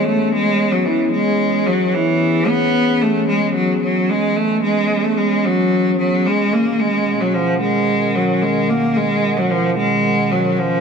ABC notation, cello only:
X:1
M:4/4
L:1/16
Q:1/4=111
K:E
V:1 name="Cello" clef=bass
A,2 G,3 F, E,2 G,4 F,2 E,2- | E,2 B,4 A,2 G,2 F,2 F,2 G,2 | A,2 G,3 A, G,2 F,4 F,2 G,2 | ^A,2 G,3 F, =F,2 G,4 ^F,2 G,2 |
^A,2 G,3 F, =F,2 G,4 ^F,2 =F,2 |]